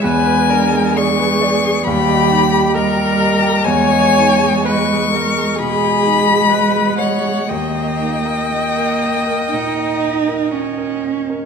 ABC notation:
X:1
M:4/4
L:1/16
Q:1/4=62
K:D#phr
V:1 name="Violin"
g4 c'4 b4 a4 | g4 c'4 b6 f2 | =g12- g2 z2 |]
V:2 name="Viola"
B2 A2 G4 =G4 A4 | c4 B2 A2 G4 B2 c2 | d12- d2 z2 |]
V:3 name="Grand piano"
E,, B =D G =d B d G ^D,, ^d ^D =G d G d G | E,, d D G d G d G B,, d D G d G d G | D,, d D A d A d A A,, d D A d A d A |]
V:4 name="Cello" clef=bass
G,8 =G,4 G,4 | G,8 G,8 | A,4 A,4 D4 C4 |]